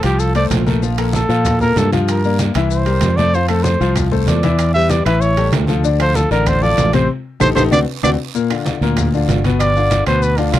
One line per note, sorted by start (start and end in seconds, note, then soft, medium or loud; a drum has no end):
0.03 0.48 C2 medium
0.03 0.30 F3 medium
0.03 0.29 F4 medium
0.03 0.21 G4 medium
0.03 0.30 F5 medium
0.03 high conga soft
0.03 high timbale medium
0.03 short guiro medium
0.03 maracas soft
0.20 0.35 A4 medium
0.20 high conga soft
0.20 long guiro medium
0.20 maracas medium
0.35 0.61 A3 medium
0.35 0.61 A4 medium
0.35 0.61 C5 medium
0.35 0.45 D5 medium
0.35 high conga soft
0.35 high timbale medium
0.35 maracas soft
0.50 1.24 A#1 medium
0.50 high conga medium
0.50 high timbale medium
0.50 low timbale medium
0.50 short guiro medium
0.50 maracas medium
0.66 0.80 A3 medium
0.66 0.80 A4 medium
0.66 0.80 A#4 medium
0.66 high conga medium
0.66 short guiro medium
0.66 maracas soft
0.82 0.95 F3 medium
0.82 0.95 F4 medium
0.82 0.95 F5 medium
0.82 high conga soft
0.82 long guiro medium
0.82 maracas medium
0.98 1.24 A#3 medium
0.98 1.24 A4 medium
0.98 1.24 A#4 medium
0.98 high conga soft
0.98 high timbale loud
0.98 maracas soft
1.13 1.59 A4 medium
1.13 high conga medium
1.13 low timbale medium
1.13 short guiro medium
1.13 maracas medium
1.29 1.73 A#2 medium
1.29 1.55 F3 medium
1.29 1.55 F4 medium
1.29 1.55 F5 medium
1.29 short guiro medium
1.29 maracas soft
1.45 high conga soft
1.45 low conga medium
1.45 high timbale medium
1.45 long guiro medium
1.45 maracas medium
1.60 1.87 A#3 medium
1.60 1.87 A4 medium
1.60 1.80 A#4 medium
1.60 1.87 A#4 medium
1.60 high conga soft
1.60 low conga medium
1.60 maracas soft
1.76 2.49 G2 medium
1.76 1.93 A4 medium
1.76 high conga medium
1.76 high timbale medium
1.76 low timbale medium
1.76 short guiro medium
1.76 maracas medium
1.92 2.18 F3 medium
1.92 2.18 F4 medium
1.92 2.09 F4 soft
1.92 2.18 F5 medium
1.92 high conga medium
1.92 high timbale medium
1.92 short guiro medium
1.92 maracas soft
2.08 2.40 A#4 medium
2.08 high conga soft
2.08 high timbale loud
2.08 long guiro medium
2.08 maracas medium
2.24 2.50 A#3 medium
2.24 2.50 A#4 medium
2.24 2.50 D5 medium
2.24 high conga soft
2.24 maracas soft
2.39 high conga medium
2.39 high timbale medium
2.39 low timbale medium
2.39 short guiro medium
2.39 maracas medium
2.54 2.99 C2 medium
2.54 2.81 E3 medium
2.54 2.81 E4 medium
2.54 2.82 E5 medium
2.54 high conga soft
2.54 high timbale medium
2.54 short guiro medium
2.54 maracas soft
2.70 3.18 C5 medium
2.70 high conga soft
2.70 long guiro medium
2.70 maracas medium
2.86 3.12 G3 medium
2.86 3.12 G4 medium
2.86 3.13 A#4 medium
2.86 high conga soft
2.86 high timbale medium
2.86 maracas soft
3.01 3.75 F2 loud
3.01 high conga medium
3.01 high timbale medium
3.01 low timbale medium
3.01 short guiro medium
3.01 maracas medium
3.16 3.31 A3 medium
3.16 3.31 A4 medium
3.16 3.32 C5 medium
3.16 3.36 D5 loud
3.16 high conga medium
3.16 short guiro medium
3.16 maracas soft
3.34 3.47 F3 medium
3.34 3.47 F4 medium
3.34 3.48 C5 medium
3.34 3.47 F5 medium
3.34 high conga soft
3.34 long guiro medium
3.34 maracas medium
3.48 3.75 A3 medium
3.48 3.65 A4 medium
3.48 3.75 A4 medium
3.48 3.75 C5 medium
3.48 high conga soft
3.48 high timbale medium
3.48 claves medium
3.48 maracas soft
3.63 3.95 C5 medium
3.63 high conga medium
3.63 low timbale medium
3.63 short guiro medium
3.63 maracas medium
3.80 4.24 C2 medium
3.80 4.06 F3 medium
3.80 4.07 F4 medium
3.80 4.07 F5 medium
3.80 short guiro medium
3.80 maracas soft
3.96 high conga soft
3.96 low conga medium
3.96 high timbale medium
3.96 long guiro medium
3.96 claves medium
3.96 maracas medium
4.11 4.37 A3 medium
4.11 4.38 A4 medium
4.11 4.38 C5 medium
4.11 high conga soft
4.11 low conga medium
4.11 maracas soft
4.27 5.00 E2 medium
4.27 4.72 D5 medium
4.27 high conga medium
4.27 high timbale medium
4.27 low timbale medium
4.27 short guiro medium
4.27 maracas medium
4.43 4.69 E3 medium
4.43 4.69 E4 medium
4.43 4.70 E5 medium
4.43 high conga medium
4.43 high timbale medium
4.43 short guiro medium
4.43 maracas soft
4.58 high conga soft
4.58 high timbale loud
4.58 long guiro medium
4.58 claves medium
4.58 maracas medium
4.74 5.01 G3 medium
4.74 5.01 G4 medium
4.74 5.01 B4 medium
4.74 4.92 E5 loud
4.74 high conga soft
4.74 maracas soft
4.90 5.05 D5 medium
4.90 high conga medium
4.90 high timbale medium
4.90 low timbale medium
4.90 short guiro medium
4.90 maracas medium
5.05 5.50 A1 medium
5.05 5.32 E3 medium
5.05 5.32 E4 medium
5.05 5.22 B4 medium
5.05 5.32 E5 medium
5.05 high conga soft
5.05 high timbale medium
5.05 short guiro medium
5.05 claves medium
5.05 maracas soft
5.21 5.53 C#5 loud
5.21 high conga soft
5.21 long guiro medium
5.21 maracas medium
5.36 5.63 G3 medium
5.36 5.63 G4 medium
5.36 5.63 A4 medium
5.36 high conga soft
5.36 high timbale medium
5.36 maracas soft
5.52 6.25 D2 medium
5.52 high conga medium
5.52 high timbale medium
5.52 low timbale medium
5.52 short guiro medium
5.52 claves medium
5.52 maracas medium
5.67 5.81 F3 medium
5.67 5.82 F4 medium
5.67 5.82 A4 medium
5.67 high conga medium
5.67 short guiro medium
5.67 maracas soft
5.84 5.97 D3 medium
5.84 5.97 D4 medium
5.84 5.98 D5 medium
5.84 high conga soft
5.84 long guiro medium
5.84 maracas medium
5.99 6.25 F3 medium
5.99 6.26 F4 medium
5.99 6.26 A4 medium
5.99 6.17 C5 loud
5.99 high conga soft
5.99 high timbale medium
5.99 claves medium
5.99 maracas soft
6.15 6.31 A4 medium
6.15 high conga medium
6.15 low timbale medium
6.15 short guiro medium
6.15 maracas medium
6.31 6.75 A1 loud
6.31 6.57 D3 loud
6.31 6.57 D4 medium
6.31 6.49 A#4 medium
6.31 6.57 D5 medium
6.31 short guiro medium
6.31 maracas soft
6.46 6.64 C5 loud
6.46 high conga soft
6.46 low conga medium
6.46 high timbale loud
6.46 long guiro medium
6.46 claves medium
6.46 maracas medium
6.62 6.88 F3 medium
6.62 6.88 F4 medium
6.62 6.88 A4 medium
6.62 6.94 D5 loud
6.62 high conga soft
6.62 maracas soft
6.77 7.07 A1 medium
6.77 high conga medium
6.77 high timbale medium
6.77 low timbale medium
6.77 short guiro medium
6.77 maracas medium
6.93 7.06 C3 medium
6.93 7.07 C4 medium
6.93 7.07 C5 medium
6.93 7.09 C5 medium
6.93 high conga medium
6.93 high timbale medium
6.93 short guiro medium
6.93 maracas soft
7.40 7.53 A1 loud
7.40 7.51 D#4 medium
7.40 7.50 G4 loud
7.40 7.50 A4 loud
7.40 7.49 C5 loud
7.40 high conga loud
7.40 high timbale medium
7.40 long guiro loud
7.40 claves loud
7.40 maracas loud
7.55 7.68 A1 loud
7.55 7.66 D#4 loud
7.55 7.66 G4 loud
7.55 7.66 A4 loud
7.55 7.63 C5 loud
7.55 high conga loud
7.55 high timbale loud
7.55 long guiro loud
7.55 claves loud
7.55 maracas loud
7.71 7.84 D2 loud
7.71 7.82 C4 loud
7.71 7.82 D4 loud
7.71 7.82 F#4 loud
7.71 7.80 D5 loud
7.71 high conga loud
7.71 high timbale loud
7.71 long guiro loud
7.71 claves loud
7.71 maracas loud
8.02 8.15 D2 loud
8.02 8.14 C4 medium
8.02 8.14 D4 loud
8.02 8.14 F#4 loud
8.02 8.11 D5 loud
8.02 high conga loud
8.02 high timbale loud
8.02 long guiro loud
8.02 claves loud
8.02 maracas loud
8.35 8.48 A#2 medium
8.35 8.48 A#3 medium
8.35 8.48 A#4 medium
8.35 high conga soft
8.35 long guiro medium
8.35 maracas medium
8.50 8.76 D3 medium
8.50 8.76 D4 medium
8.50 8.76 F4 medium
8.50 high conga soft
8.50 high timbale medium
8.50 claves medium
8.50 maracas soft
8.65 high conga medium
8.65 low timbale medium
8.65 short guiro medium
8.65 maracas medium
8.81 9.25 D2 medium
8.81 9.08 A#2 medium
8.81 9.08 A#3 medium
8.81 9.08 A#4 medium
8.81 short guiro medium
8.81 maracas soft
8.97 high conga soft
8.97 low conga medium
8.97 high timbale medium
8.97 long guiro medium
8.97 claves medium
8.97 maracas medium
9.14 9.40 D3 medium
9.14 9.40 D4 medium
9.14 9.40 F4 medium
9.14 high conga soft
9.14 maracas soft
9.28 10.01 G1 medium
9.28 high conga medium
9.28 high timbale medium
9.28 low timbale medium
9.28 short guiro medium
9.28 maracas medium
9.44 9.70 B2 medium
9.44 9.71 B3 medium
9.44 9.71 B4 medium
9.44 high conga medium
9.44 high timbale medium
9.44 short guiro medium
9.44 maracas soft
9.60 10.04 D5 loud
9.60 high conga soft
9.60 high timbale loud
9.60 long guiro medium
9.60 claves medium
9.60 maracas medium
9.76 10.02 D3 medium
9.76 10.02 D4 medium
9.76 10.02 F4 medium
9.76 high conga soft
9.76 maracas soft
9.91 high conga medium
9.91 high timbale medium
9.91 low timbale medium
9.91 short guiro medium
9.91 maracas medium
10.07 10.51 D2 medium
10.07 10.33 B2 medium
10.07 10.33 B3 medium
10.07 10.33 B4 medium
10.07 10.24 C5 loud
10.07 high conga soft
10.07 high timbale medium
10.07 short guiro medium
10.07 claves medium
10.07 maracas soft
10.22 10.39 B4 medium
10.22 high conga soft
10.22 long guiro medium
10.22 maracas medium
10.38 10.59 D3 medium
10.38 10.54 D4 medium
10.38 10.59 D4 medium
10.38 10.59 F4 medium
10.38 high conga soft
10.38 high timbale medium
10.38 maracas soft
10.53 10.59 C2 loud
10.53 10.59 F4 medium
10.53 high conga medium
10.53 high timbale medium
10.53 low timbale medium
10.53 short guiro medium
10.53 claves medium
10.53 maracas medium